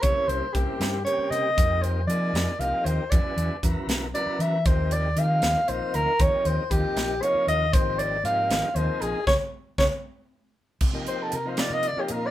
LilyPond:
<<
  \new Staff \with { instrumentName = "Soprano saxophone" } { \time 6/8 \key c \minor \tempo 4. = 78 des''8 c''8 g'4 des''8 ees''8~ | ees''8 c''8 d''4 f''8 c''8 | d''4 r4 d''8 e''8 | c''8 d''8 f''4 c''8 bes'8 |
des''8 c''8 g'4 des''8 ees''8 | c''8 d''8 f''4 c''8 aes'8 | des''8 r8 des''8 r4. | r8 c''16 a'16 bes'16 c''16 d''16 ees''16 d''16 g'16 bes'16 d''16 | }
  \new Staff \with { instrumentName = "Tonewheel organ" } { \time 6/8 \key c \minor <des g bes c' e'>8. r16 <des g bes c' e'>8. r16 <des g bes c' g'>8. r16 | <c f bes ees' g'>8. r16 <c f bes ees' aes'>8. r16 <c f bes ees' g'>8. r16 | <des fis b e' gis'>8. r16 <des fis b e' bes'>8. r16 <des fis b e' bes'>8. r16 | <c f bes ees' g'>8. r16 <c f bes ees' g'>8. r16 <c f bes ees' f'>8. r16 |
<c f bes ees' g'>8. r16 <c f bes ees' g'>8. r16 <c f bes ees' f'>8. r16 | <c f bes ees' g'>8. r16 <c f bes ees' g'>8. r16 <c f bes ees' aes'>8. r16 | <aes b des'>8 r8 <aes b des'>8 r4. | r16 <c f bes ees' g'>8. r16 <c f bes ees' f'>8. r16 <c f bes ees' f'>8. | }
  \new Staff \with { instrumentName = "Fingered electric bass" } { \clef bass \time 6/8 \key c \minor c,16 r16 c,16 r16 c,16 r16 g,8 r8 c8 | f,4 f8 f,16 r16 c,16 r16 ees,16 r16 | e,16 r16 e,16 r16 e,16 r16 b,,8 r8 e8 | ees,4 ees8 ees,16 r16 bes,,16 r16 d,16 r16 |
ees,16 r16 ees,16 r16 ees,16 r16 bes,,8 r8 ees,8 | aes,,4 aes,8 aes,,16 r16 ees,16 r16 bes,,16 r16 | des,16 r8. des,16 r4. r16 | c8 r8 c8. c8 r16 bes,8 | }
  \new DrumStaff \with { instrumentName = "Drums" } \drummode { \time 6/8 <hh bd>8 hh8 <hh bd>8 <hh sn>8 hh8 hh8 | <hh bd>8 hh8 hh8 <hh sn>8 hh8 hh8 | <hh bd>8 hh8 <hh bd>8 <hh sn>8 hh8 hh8 | <hh bd>8 hh8 hh8 <hh sn>8 hh8 hh8 |
<hh bd>8 hh8 <hh bd>8 <hh sn>8 hh8 hh8 | <hh bd>8 hh8 hh8 <hh sn>8 hh8 hh8 | <bd sn>4 <bd sn>8 r4. | <cymc bd>8 hh8 hh8 <hh sn>8 hh8 hh8 | }
>>